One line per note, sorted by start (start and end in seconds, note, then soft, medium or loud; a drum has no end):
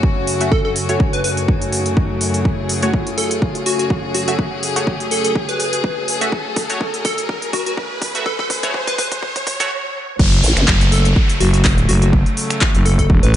0.00 9.67 F#2 medium
0.00 9.67 C#3 medium
0.00 9.67 A3 medium
0.00 2.41 F#4 medium
0.00 9.71 F#4 medium
0.00 9.71 C#5 medium
0.00 9.71 G#5 medium
0.00 kick loud
0.00 riser medium
0.27 open hi-hat loud
0.41 0.50 A3 loud
0.41 0.50 F#4 medium
0.41 0.50 E5 loud
0.41 closed hi-hat medium
0.52 0.60 A4 medium
0.52 kick loud
0.65 0.72 A4 medium
0.76 open hi-hat loud
0.89 1.04 A3 medium
0.89 1.04 F#4 medium
0.89 1.04 C#5 medium
0.89 closed hi-hat medium
1.00 kick loud
1.13 1.20 B4 medium
1.13 closed hi-hat soft
1.24 1.33 B4 medium
1.24 open hi-hat loud
1.37 closed hi-hat medium
1.48 kick loud
1.62 closed hi-hat soft
1.73 open hi-hat loud
1.86 closed hi-hat medium
1.97 kick loud
2.21 open hi-hat loud
2.34 closed hi-hat medium
2.45 9.67 G#4 medium
2.45 kick loud
2.69 open hi-hat loud
2.83 2.98 A3 medium
2.83 2.98 F#4 medium
2.83 2.98 C#5 medium
2.83 closed hi-hat medium
2.94 kick loud
3.07 closed hi-hat soft
3.18 3.32 A4 medium
3.18 open hi-hat loud
3.31 closed hi-hat medium
3.42 kick loud
3.55 closed hi-hat soft
3.66 3.75 F#4 medium
3.66 open hi-hat loud
3.79 3.86 F#4 medium
3.79 closed hi-hat medium
3.90 kick loud
4.15 4.23 F#4 medium
4.15 open hi-hat loud
4.28 4.37 A3 loud
4.28 4.37 F#4 medium
4.28 4.35 F#4 medium
4.28 4.37 E5 loud
4.28 closed hi-hat medium
4.39 kick loud
4.63 open hi-hat loud
4.76 4.91 A3 medium
4.76 4.91 F#4 medium
4.76 4.91 C#5 medium
4.76 closed hi-hat medium
4.87 kick loud
5.00 closed hi-hat medium
5.11 5.20 A4 medium
5.11 open hi-hat loud
5.24 5.32 A4 medium
5.24 closed hi-hat medium
5.35 kick loud
5.49 6.16 B4 loud
5.49 closed hi-hat medium
5.60 open hi-hat loud
5.73 closed hi-hat medium
5.84 kick loud
6.08 open hi-hat loud
6.21 6.30 A3 loud
6.21 6.30 F#4 medium
6.21 6.30 E5 loud
6.21 closed hi-hat medium
6.32 kick loud
6.56 kick loud
6.56 open hi-hat loud
6.70 6.85 A3 medium
6.70 6.85 F#4 medium
6.70 6.85 C#5 loud
6.70 closed hi-hat medium
6.81 kick loud
6.94 closed hi-hat medium
7.05 7.19 A4 medium
7.05 kick loud
7.05 open hi-hat loud
7.18 closed hi-hat medium
7.29 kick loud
7.42 closed hi-hat medium
7.53 7.62 F#4 medium
7.53 kick loud
7.53 open hi-hat loud
7.66 7.74 F#4 medium
7.66 closed hi-hat medium
7.77 kick loud
8.02 kick loud
8.02 open hi-hat loud
8.15 8.24 A3 loud
8.15 8.24 F#4 medium
8.15 8.24 E5 loud
8.15 closed hi-hat medium
8.26 8.34 A4 medium
8.26 kick loud
8.39 8.46 A4 medium
8.39 kick medium
8.50 kick loud
8.50 open hi-hat loud
8.63 8.78 A3 medium
8.63 8.78 F#4 medium
8.63 8.78 C#5 loud
8.63 kick medium
8.63 closed hi-hat medium
8.74 kick loud
8.87 8.95 B4 medium
8.87 kick medium
8.87 closed hi-hat medium
8.98 9.07 B4 medium
8.98 kick loud
8.98 open hi-hat loud
9.12 kick medium
9.12 closed hi-hat medium
9.23 kick loud
9.36 kick medium
9.36 closed hi-hat medium
9.47 kick loud
9.47 open hi-hat loud
9.60 9.69 A3 medium
9.60 9.69 F#4 medium
9.60 9.69 C#5 loud
9.60 kick medium
9.60 closed hi-hat medium
10.19 10.42 F#1 loud
10.19 13.36 C#3 medium
10.19 13.36 F#3 medium
10.19 13.36 A3 medium
10.19 kick loud
10.19 crash loud
10.19 downlifter medium
10.33 closed hi-hat soft
10.44 10.55 A1 loud
10.44 open hi-hat loud
10.57 10.66 F#1 loud
10.57 finger snap medium
10.57 closed hi-hat medium
10.68 11.14 F#1 loud
10.68 kick loud
10.68 clap loud
10.81 closed hi-hat medium
10.92 11.06 A4 medium
10.92 open hi-hat loud
11.05 closed hi-hat medium
11.16 kick loud
11.29 closed hi-hat medium
11.40 11.87 F#1 loud
11.40 11.49 F#4 medium
11.40 open hi-hat loud
11.54 11.61 F#4 medium
11.54 closed hi-hat medium
11.65 kick loud
11.65 clap loud
11.65 open hi-hat medium
11.78 closed hi-hat soft
11.89 12.24 F#1 loud
11.89 11.97 F#4 medium
11.89 open hi-hat loud
12.02 12.09 F#4 medium
12.02 closed hi-hat medium
12.13 kick loud
12.26 closed hi-hat soft
12.37 open hi-hat loud
12.50 finger snap medium
12.50 closed hi-hat medium
12.61 kick loud
12.61 clap loud
12.75 13.08 F#1 medium
12.75 closed hi-hat medium
12.86 12.94 A4 medium
12.86 open hi-hat loud
12.99 13.06 A4 medium
12.99 kick medium
12.99 closed hi-hat medium
13.10 13.21 E1 loud
13.10 kick loud
13.23 13.36 A1 loud
13.23 13.36 B4 loud
13.23 closed hi-hat medium